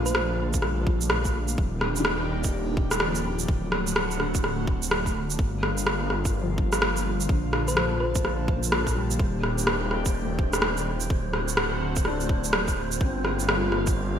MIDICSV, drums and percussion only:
0, 0, Header, 1, 2, 480
1, 0, Start_track
1, 0, Key_signature, -2, "minor"
1, 0, Tempo, 476190
1, 1593, Time_signature, 4, 2, 24, 8
1, 14305, End_track
2, 0, Start_track
2, 0, Title_t, "Drums"
2, 63, Note_on_c, 9, 82, 57
2, 148, Note_on_c, 9, 37, 98
2, 163, Note_off_c, 9, 82, 0
2, 249, Note_off_c, 9, 37, 0
2, 540, Note_on_c, 9, 82, 55
2, 543, Note_on_c, 9, 36, 94
2, 628, Note_on_c, 9, 37, 62
2, 640, Note_off_c, 9, 82, 0
2, 644, Note_off_c, 9, 36, 0
2, 728, Note_off_c, 9, 37, 0
2, 873, Note_on_c, 9, 36, 102
2, 974, Note_off_c, 9, 36, 0
2, 1019, Note_on_c, 9, 82, 55
2, 1106, Note_on_c, 9, 37, 105
2, 1120, Note_off_c, 9, 82, 0
2, 1207, Note_off_c, 9, 37, 0
2, 1258, Note_on_c, 9, 82, 39
2, 1263, Note_on_c, 9, 36, 57
2, 1359, Note_off_c, 9, 82, 0
2, 1364, Note_off_c, 9, 36, 0
2, 1494, Note_on_c, 9, 82, 54
2, 1593, Note_on_c, 9, 36, 113
2, 1595, Note_off_c, 9, 82, 0
2, 1694, Note_off_c, 9, 36, 0
2, 1826, Note_on_c, 9, 37, 65
2, 1927, Note_off_c, 9, 37, 0
2, 1975, Note_on_c, 9, 82, 59
2, 2064, Note_on_c, 9, 37, 98
2, 2076, Note_off_c, 9, 82, 0
2, 2164, Note_off_c, 9, 37, 0
2, 2458, Note_on_c, 9, 82, 54
2, 2463, Note_on_c, 9, 36, 96
2, 2559, Note_off_c, 9, 82, 0
2, 2564, Note_off_c, 9, 36, 0
2, 2792, Note_on_c, 9, 36, 101
2, 2893, Note_off_c, 9, 36, 0
2, 2937, Note_on_c, 9, 37, 70
2, 2937, Note_on_c, 9, 82, 55
2, 3025, Note_off_c, 9, 37, 0
2, 3025, Note_on_c, 9, 37, 98
2, 3037, Note_off_c, 9, 82, 0
2, 3126, Note_off_c, 9, 37, 0
2, 3177, Note_on_c, 9, 82, 42
2, 3278, Note_off_c, 9, 82, 0
2, 3418, Note_on_c, 9, 82, 54
2, 3512, Note_on_c, 9, 36, 115
2, 3519, Note_off_c, 9, 82, 0
2, 3613, Note_off_c, 9, 36, 0
2, 3749, Note_on_c, 9, 37, 66
2, 3850, Note_off_c, 9, 37, 0
2, 3903, Note_on_c, 9, 82, 61
2, 3991, Note_on_c, 9, 37, 97
2, 4003, Note_off_c, 9, 82, 0
2, 4092, Note_off_c, 9, 37, 0
2, 4144, Note_on_c, 9, 82, 33
2, 4232, Note_on_c, 9, 37, 55
2, 4244, Note_off_c, 9, 82, 0
2, 4332, Note_off_c, 9, 37, 0
2, 4382, Note_on_c, 9, 36, 97
2, 4383, Note_on_c, 9, 82, 57
2, 4475, Note_on_c, 9, 37, 62
2, 4483, Note_off_c, 9, 36, 0
2, 4484, Note_off_c, 9, 82, 0
2, 4575, Note_off_c, 9, 37, 0
2, 4711, Note_on_c, 9, 36, 100
2, 4812, Note_off_c, 9, 36, 0
2, 4863, Note_on_c, 9, 82, 60
2, 4953, Note_on_c, 9, 37, 100
2, 4964, Note_off_c, 9, 82, 0
2, 5054, Note_off_c, 9, 37, 0
2, 5102, Note_on_c, 9, 36, 58
2, 5106, Note_on_c, 9, 82, 43
2, 5202, Note_off_c, 9, 36, 0
2, 5207, Note_off_c, 9, 82, 0
2, 5346, Note_on_c, 9, 82, 57
2, 5432, Note_on_c, 9, 36, 120
2, 5447, Note_off_c, 9, 82, 0
2, 5533, Note_off_c, 9, 36, 0
2, 5675, Note_on_c, 9, 37, 65
2, 5775, Note_off_c, 9, 37, 0
2, 5824, Note_on_c, 9, 82, 61
2, 5912, Note_on_c, 9, 37, 104
2, 5925, Note_off_c, 9, 82, 0
2, 6013, Note_off_c, 9, 37, 0
2, 6150, Note_on_c, 9, 37, 54
2, 6251, Note_off_c, 9, 37, 0
2, 6302, Note_on_c, 9, 36, 100
2, 6302, Note_on_c, 9, 82, 61
2, 6402, Note_off_c, 9, 82, 0
2, 6403, Note_off_c, 9, 36, 0
2, 6632, Note_on_c, 9, 36, 106
2, 6732, Note_off_c, 9, 36, 0
2, 6779, Note_on_c, 9, 37, 74
2, 6779, Note_on_c, 9, 82, 60
2, 6873, Note_off_c, 9, 37, 0
2, 6873, Note_on_c, 9, 37, 106
2, 6880, Note_off_c, 9, 82, 0
2, 6973, Note_off_c, 9, 37, 0
2, 7023, Note_on_c, 9, 82, 45
2, 7124, Note_off_c, 9, 82, 0
2, 7263, Note_on_c, 9, 82, 59
2, 7350, Note_on_c, 9, 36, 125
2, 7364, Note_off_c, 9, 82, 0
2, 7451, Note_off_c, 9, 36, 0
2, 7590, Note_on_c, 9, 37, 64
2, 7691, Note_off_c, 9, 37, 0
2, 7741, Note_on_c, 9, 82, 61
2, 7830, Note_on_c, 9, 37, 107
2, 7842, Note_off_c, 9, 82, 0
2, 7930, Note_off_c, 9, 37, 0
2, 8218, Note_on_c, 9, 82, 59
2, 8220, Note_on_c, 9, 36, 108
2, 8312, Note_on_c, 9, 37, 60
2, 8319, Note_off_c, 9, 82, 0
2, 8321, Note_off_c, 9, 36, 0
2, 8413, Note_off_c, 9, 37, 0
2, 8549, Note_on_c, 9, 36, 113
2, 8650, Note_off_c, 9, 36, 0
2, 8701, Note_on_c, 9, 82, 58
2, 8791, Note_on_c, 9, 37, 112
2, 8802, Note_off_c, 9, 82, 0
2, 8891, Note_off_c, 9, 37, 0
2, 8938, Note_on_c, 9, 36, 64
2, 8944, Note_on_c, 9, 82, 44
2, 9039, Note_off_c, 9, 36, 0
2, 9045, Note_off_c, 9, 82, 0
2, 9181, Note_on_c, 9, 82, 60
2, 9268, Note_on_c, 9, 36, 127
2, 9282, Note_off_c, 9, 82, 0
2, 9369, Note_off_c, 9, 36, 0
2, 9510, Note_on_c, 9, 37, 60
2, 9611, Note_off_c, 9, 37, 0
2, 9660, Note_on_c, 9, 82, 62
2, 9747, Note_on_c, 9, 37, 110
2, 9761, Note_off_c, 9, 82, 0
2, 9847, Note_off_c, 9, 37, 0
2, 9990, Note_on_c, 9, 37, 52
2, 10090, Note_off_c, 9, 37, 0
2, 10137, Note_on_c, 9, 82, 59
2, 10139, Note_on_c, 9, 36, 109
2, 10238, Note_off_c, 9, 82, 0
2, 10240, Note_off_c, 9, 36, 0
2, 10470, Note_on_c, 9, 36, 117
2, 10571, Note_off_c, 9, 36, 0
2, 10618, Note_on_c, 9, 37, 68
2, 10618, Note_on_c, 9, 82, 59
2, 10704, Note_off_c, 9, 37, 0
2, 10704, Note_on_c, 9, 37, 107
2, 10719, Note_off_c, 9, 82, 0
2, 10805, Note_off_c, 9, 37, 0
2, 10858, Note_on_c, 9, 82, 43
2, 10959, Note_off_c, 9, 82, 0
2, 11094, Note_on_c, 9, 82, 58
2, 11191, Note_on_c, 9, 36, 119
2, 11194, Note_off_c, 9, 82, 0
2, 11292, Note_off_c, 9, 36, 0
2, 11426, Note_on_c, 9, 37, 58
2, 11526, Note_off_c, 9, 37, 0
2, 11577, Note_on_c, 9, 82, 59
2, 11664, Note_on_c, 9, 37, 109
2, 11678, Note_off_c, 9, 82, 0
2, 11765, Note_off_c, 9, 37, 0
2, 12058, Note_on_c, 9, 82, 57
2, 12062, Note_on_c, 9, 36, 102
2, 12146, Note_on_c, 9, 37, 57
2, 12159, Note_off_c, 9, 82, 0
2, 12163, Note_off_c, 9, 36, 0
2, 12247, Note_off_c, 9, 37, 0
2, 12303, Note_on_c, 9, 82, 31
2, 12391, Note_on_c, 9, 36, 106
2, 12403, Note_off_c, 9, 82, 0
2, 12492, Note_off_c, 9, 36, 0
2, 12542, Note_on_c, 9, 82, 55
2, 12629, Note_on_c, 9, 37, 108
2, 12643, Note_off_c, 9, 82, 0
2, 12730, Note_off_c, 9, 37, 0
2, 12781, Note_on_c, 9, 82, 43
2, 12782, Note_on_c, 9, 36, 62
2, 12882, Note_off_c, 9, 36, 0
2, 12882, Note_off_c, 9, 82, 0
2, 13022, Note_on_c, 9, 82, 58
2, 13112, Note_on_c, 9, 36, 117
2, 13123, Note_off_c, 9, 82, 0
2, 13212, Note_off_c, 9, 36, 0
2, 13352, Note_on_c, 9, 37, 58
2, 13453, Note_off_c, 9, 37, 0
2, 13503, Note_on_c, 9, 82, 58
2, 13594, Note_on_c, 9, 37, 100
2, 13604, Note_off_c, 9, 82, 0
2, 13695, Note_off_c, 9, 37, 0
2, 13831, Note_on_c, 9, 37, 50
2, 13931, Note_off_c, 9, 37, 0
2, 13980, Note_on_c, 9, 82, 55
2, 13983, Note_on_c, 9, 36, 106
2, 14081, Note_off_c, 9, 82, 0
2, 14084, Note_off_c, 9, 36, 0
2, 14305, End_track
0, 0, End_of_file